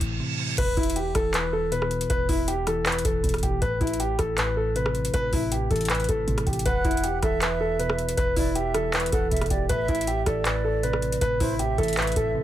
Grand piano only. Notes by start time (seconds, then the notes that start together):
0.58 B4
0.77 E4
0.96 G4
1.15 A4
1.34 B4
1.53 A4
1.72 B4
2.10 B4
2.29 E4
2.48 G4
2.67 A4
2.86 B4
3.05 A4
3.43 G4
3.62 B4
3.81 E4
4.00 G4
4.19 A4
4.38 B4
4.57 A4
4.76 B4
5.14 B4
5.33 E4
5.52 G4
5.71 A4
5.90 B4
6.09 A4
6.47 G4
6.66 B4
6.85 E4
7.04 G4
7.23 A4
7.42 B4
7.61 A4
7.79 B4
8.17 B4
8.36 E4
8.55 G4
8.74 A4
8.93 B4
9.13 A4
9.51 G4
9.69 B4
9.88 E4
10.07 G4
10.27 A4
10.45 B4
10.64 A4
10.83 B4
11.21 B4
11.40 E4
11.59 G4
11.78 A4
11.97 B4
12.16 A4